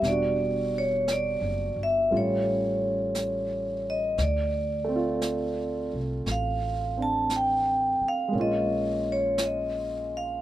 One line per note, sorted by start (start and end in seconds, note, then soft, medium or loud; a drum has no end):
0.00 1.37 E1 medium
0.00 2.09 G3 soft
0.00 2.11 B3 soft
0.00 brush sweep soft
0.00 snare soft
0.06 2.13 D4 soft
0.06 2.14 F#4 soft
0.06 0.79 D5 medium
0.78 1.10 C#5 medium
1.08 brush sweep soft
1.08 snare soft
1.08 hi-hat pedal soft
1.12 1.77 D5 medium
1.41 1.74 F#1 medium
1.76 2.08 G1 medium
1.83 2.14 E5 medium
2.11 4.14 A1 medium
2.11 4.17 G3 soft
2.11 4.18 A3 soft
2.11 4.18 C#4 soft
2.11 4.18 F4 soft
2.11 brush sweep soft
2.17 3.93 C#5 medium
3.15 brush sweep soft
3.15 snare soft
3.15 hi-hat pedal medium
3.90 4.21 D#5 medium
4.18 5.89 D2 medium
4.18 brush sweep soft
4.18 snare soft
4.22 5.91 D5 medium
4.84 8.31 A3 soft
4.84 6.96 C4 soft
4.96 8.36 F4 soft
5.22 brush sweep soft
5.22 snare soft
5.22 hi-hat pedal medium
5.93 6.23 C2 medium
6.26 7.97 A1 medium
6.26 brush sweep soft
6.26 snare soft
6.31 7.02 F5 medium
6.97 8.33 C4 soft
6.97 8.34 D4 soft
7.02 7.33 A5 medium
7.30 brush sweep soft
7.30 snare soft
7.30 hi-hat pedal soft
7.36 8.06 G5 medium
8.01 muted upright bass stroke soft
8.08 8.35 F5 medium
8.28 10.40 G#3 soft
8.28 10.41 A#3 soft
8.33 10.38 A#1 medium
8.33 10.42 C#4 soft
8.33 brush sweep soft
8.40 10.42 F4 medium
8.40 9.11 D#5 medium
9.12 9.42 C#5 medium
9.38 brush sweep soft
9.38 snare soft
9.38 hi-hat pedal soft
9.46 10.15 D#5 medium
10.17 10.42 F5 medium